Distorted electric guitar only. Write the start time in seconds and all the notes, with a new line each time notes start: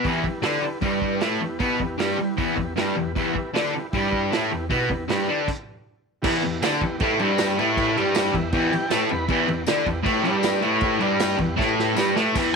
0.05 E2 E3
0.24 muted distorted electric guitar stroke
0.42 D3 D4
0.62 muted distorted electric guitar stroke
0.81 G2 G3
1.21 A2 A3
1.40 E2
1.59 B2 B3
1.80 E2
1.98 G2 G3
2.18 muted distorted electric guitar stroke
2.37 E2 E3
2.57 E2
2.76 G2 G3
2.96 E2
3.15 E2 E3
3.34 muted distorted electric guitar stroke
3.54 D3 D4
3.74 muted distorted electric guitar stroke
3.94 G2 G3
4.31 A2 A3
4.51 E2
4.70 B2 B3
4.89 E2
5.08 G2 G3
5.28 D3 D4
6.24 E2 E3
6.44 E2
6.63 D3 D4
6.81 E2
7.01 A2 A3
7.19 G2 G3
7.57 A2 A3
7.96 G2 G3
8.33 E2
8.53 E2 E3
8.72 muted distorted electric guitar stroke
8.91 A2 A3
9.10 E2
9.28 E2 E3
9.48 E2
9.67 D3 D4
9.86 E2
10.03 A2 A3
10.23 G2 G3
10.61 A2 A3
10.99 G2 G3
11.38 E2
11.56 A2 A3
11.95 G2 G3
12.15 A2 A3
12.35 E2 E3